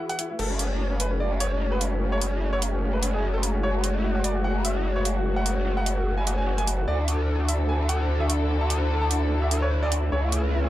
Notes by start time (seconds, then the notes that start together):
Already playing: E3 E4 F#4 G#4 B4
0.09 F#5, closed hi-hat
0.19 E4, closed hi-hat
0.30 E4
0.39 F#1 G#3 A3 F#4 A4, crash
0.50 C#4
0.59 C#4, closed hi-hat
0.80 C#4
0.91 C#4
1.00 B4, closed hi-hat
1.11 C#4
1.20 D5
1.31 C#4
1.40 C#5, closed hi-hat
1.51 C#4
1.61 C#4
1.72 B4
1.81 C#4, closed hi-hat
1.92 C#4
2.01 C#4
2.12 C#5
2.21 C#4, closed hi-hat
2.32 C#4
2.42 C#4
2.53 C#5
2.62 C#4, closed hi-hat
2.73 C#4
2.82 C#4
2.93 B4
3.03 C#4, closed hi-hat
3.14 G#4
3.23 C#4
3.34 A4
3.43 C#4, closed hi-hat
3.54 C#4
3.63 C#5
3.74 F#4
3.84 F#4, closed hi-hat
4.04 F#4
4.15 F#4
4.24 D5, closed hi-hat
4.35 F#4
4.44 F#5
4.55 F#4
4.65 E5, closed hi-hat
4.76 F#4
4.85 F#4
4.96 C#5
5.05 F#4, closed hi-hat
5.16 F#4
5.25 F#4
5.36 F#5
5.46 F#4, closed hi-hat
5.57 F#4
5.66 F#4
5.77 F#5
5.86 F#4, closed hi-hat
5.97 F#4
6.07 F#4
6.18 G#5
6.27 F#4, closed hi-hat
6.38 G#5
6.47 F#4
6.58 G#5, closed hi-hat
6.67 F#4, closed hi-hat
6.78 F#4
6.88 D2 D3 D4 E4 A4 D5
6.99 D4
7.08 D4, closed hi-hat
7.28 D4
7.39 D4
7.49 E5, closed hi-hat
7.60 D4
7.69 G#5
7.80 D4
7.89 F#5, closed hi-hat
8.00 D4
8.09 D4
8.20 E5
8.30 D4, closed hi-hat
8.41 D4
8.50 D4
8.61 A5
8.70 D4, closed hi-hat
8.81 D4
8.90 D4
9.01 A5
9.11 D4, closed hi-hat
9.22 D4
9.31 D4
9.42 E5
9.51 D4, closed hi-hat
9.62 C#5
9.72 D4
9.83 D5
9.92 D4, closed hi-hat
10.03 D4
10.12 C#2 A3 C#4 C#5, riser
10.23 E4
10.32 E4, closed hi-hat
10.53 E4
10.64 E4